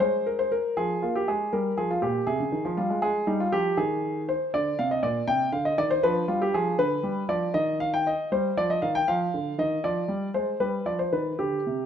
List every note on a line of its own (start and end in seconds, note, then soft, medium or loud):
0.00 0.56 G#3 medium
0.00 0.26 C5 medium
0.26 0.39 A#4 medium
0.39 0.52 C5 medium
0.52 0.78 A#4 medium
0.77 0.96 F3 medium
0.77 1.03 G#4 medium
1.02 1.21 A#3 soft
1.02 1.15 F4 medium
1.16 1.28 G4 medium
1.28 1.46 G#3 soft
1.28 1.53 G#4 medium
1.53 1.71 G3 soft
1.53 1.78 A#4 medium
1.77 1.95 F3 soft
1.77 1.90 G#4 medium
1.91 2.03 F4 medium
2.02 2.20 A#2 soft
2.02 2.27 G4 medium
2.27 2.39 C3 medium
2.27 2.70 G#4 medium
2.40 2.52 C#3 soft
2.52 2.64 D#3 soft
2.65 2.77 F3 medium
2.77 2.90 G3 soft
2.77 3.03 F4 medium
2.90 3.01 G#3 medium
3.02 3.20 G#3 medium
3.02 3.28 G#4 medium
3.27 3.46 G3 medium
3.27 3.40 D#4 medium
3.40 3.53 F4 medium
3.52 3.71 F3 medium
3.52 3.78 G4 medium
3.77 4.32 D#3 medium
3.77 4.21 G#4 medium
4.29 4.50 C5 medium
4.54 4.72 D3 medium
4.54 4.79 D5 medium
4.79 4.97 C3 soft
4.79 4.91 F5 medium
4.91 5.03 D#5 medium
5.03 5.21 A#2 soft
5.03 5.28 D5 medium
5.28 5.45 C3 soft
5.28 5.49 G5 medium
5.52 5.70 D3 medium
5.52 5.65 F5 medium
5.65 5.78 D#5 medium
5.78 5.96 D#3 soft
5.78 5.90 D5 medium
5.91 6.03 C5 medium
6.03 6.21 F3 medium
6.03 7.51 D4 soft
6.03 6.25 B4 medium
6.28 6.46 G3 medium
6.28 6.41 F4 medium
6.42 6.54 G4 medium
6.54 6.72 F3 medium
6.54 6.75 G#4 medium
6.79 6.96 D3 medium
6.79 7.21 B4 medium
7.03 7.21 G3 soft
7.29 7.47 F3 soft
7.29 7.51 D5 medium
7.54 8.09 D#3 medium
7.54 7.76 D#5 medium
7.80 7.93 F5 medium
7.94 8.06 G5 medium
8.07 8.28 D#5 medium
8.32 8.49 G3 medium
8.32 8.56 C5 medium
8.57 8.75 F3 medium
8.57 8.69 D5 medium
8.70 8.82 D#5 medium
8.82 9.00 D#3 medium
8.82 8.94 F5 medium
8.95 9.07 G5 medium
9.08 9.26 F3 medium
9.08 9.58 F5 medium
9.34 9.52 D3 soft
9.58 9.76 D#3 medium
9.58 9.84 D#5 medium
9.84 10.02 F3 medium
9.84 10.27 D5 medium
10.08 10.27 G3 soft
10.34 10.53 G#3 soft
10.34 10.56 C5 medium
10.60 10.78 G3 soft
10.60 10.86 B4 medium
10.86 11.05 F3 soft
10.86 10.99 D5 medium
10.99 11.12 C5 medium
11.12 11.32 D#3 soft
11.12 11.39 B4 medium
11.39 11.58 D3 soft
11.39 11.85 G4 medium
11.67 11.86 C3 soft